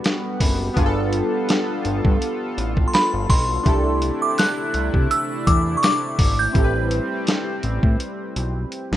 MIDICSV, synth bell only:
0, 0, Header, 1, 2, 480
1, 0, Start_track
1, 0, Key_signature, 1, "major"
1, 0, Tempo, 722892
1, 509, Time_signature, 4, 2, 24, 8
1, 5955, End_track
2, 0, Start_track
2, 0, Title_t, "Synth bell"
2, 0, Program_c, 0, 98
2, 1910, Note_on_c, 0, 84, 62
2, 1951, Note_off_c, 0, 84, 0
2, 1953, Note_on_c, 0, 83, 88
2, 2174, Note_off_c, 0, 83, 0
2, 2192, Note_on_c, 0, 84, 88
2, 2802, Note_on_c, 0, 86, 83
2, 2818, Note_off_c, 0, 84, 0
2, 2851, Note_off_c, 0, 86, 0
2, 2912, Note_on_c, 0, 90, 98
2, 3364, Note_off_c, 0, 90, 0
2, 3392, Note_on_c, 0, 88, 101
2, 3633, Note_on_c, 0, 86, 95
2, 3638, Note_off_c, 0, 88, 0
2, 3815, Note_off_c, 0, 86, 0
2, 3832, Note_on_c, 0, 85, 73
2, 3872, Note_off_c, 0, 85, 0
2, 3873, Note_on_c, 0, 86, 101
2, 4244, Note_on_c, 0, 91, 99
2, 4252, Note_off_c, 0, 86, 0
2, 5765, Note_off_c, 0, 91, 0
2, 5955, End_track
0, 0, End_of_file